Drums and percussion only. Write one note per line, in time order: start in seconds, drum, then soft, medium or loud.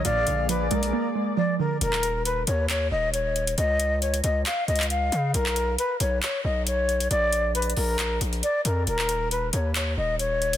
0.05 closed hi-hat medium
0.27 closed hi-hat medium
0.49 closed hi-hat medium
0.71 closed hi-hat soft
0.71 open hi-hat medium
0.83 closed hi-hat medium
1.81 closed hi-hat medium
1.93 clap medium
2.03 closed hi-hat medium
2.25 closed hi-hat medium
2.47 closed hi-hat medium
2.70 clap loud
2.70 closed hi-hat medium
3.14 closed hi-hat medium
3.36 closed hi-hat soft
3.47 closed hi-hat medium
3.58 closed hi-hat medium
3.80 closed hi-hat medium
4.02 closed hi-hat medium
4.14 closed hi-hat medium
4.24 closed hi-hat medium
4.46 clap loud
4.46 closed hi-hat medium
4.68 closed hi-hat soft
4.76 closed hi-hat medium
4.80 clap medium
4.80 closed hi-hat medium
4.90 closed hi-hat medium
5.12 closed hi-hat medium
5.34 closed hi-hat medium
5.46 clap medium
5.56 closed hi-hat medium
5.78 closed hi-hat medium
6.00 closed hi-hat medium
6.23 clap loud
6.23 closed hi-hat medium
6.67 closed hi-hat medium
6.89 closed hi-hat soft
7.00 closed hi-hat medium
7.11 closed hi-hat medium
7.33 closed hi-hat medium
7.55 closed hi-hat medium
7.62 closed hi-hat medium
7.70 closed hi-hat medium
7.77 open hi-hat medium
7.99 clap loud
7.99 closed hi-hat medium
8.21 closed hi-hat medium
8.33 closed hi-hat soft
8.43 closed hi-hat medium
8.65 closed hi-hat medium
8.87 closed hi-hat medium
8.99 clap medium
9.09 closed hi-hat medium
9.31 closed hi-hat medium
9.53 closed hi-hat medium
9.75 clap loud
9.75 closed hi-hat medium
10.19 closed hi-hat medium
10.42 closed hi-hat soft
10.53 closed hi-hat medium